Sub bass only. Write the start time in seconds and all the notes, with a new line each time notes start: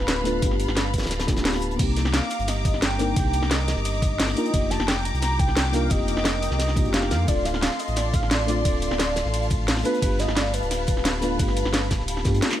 Already playing: D1
0.42 G1
0.68 G1
1.03 D1
1.79 C2
2.40 G1
3.16 C2
3.42 C2
3.77 G1
4.54 F1
4.80 F1
5.14 C2
5.91 F1
6.17 F1
6.51 C2
6.85 F1
7.11 F2
7.28 D1
7.88 A1
8.65 D1
8.91 D1
9.26 A1
10.02 G1
10.28 G1
10.63 D1
11.39 G1
11.65 G1
12.00 D1
12.25 G2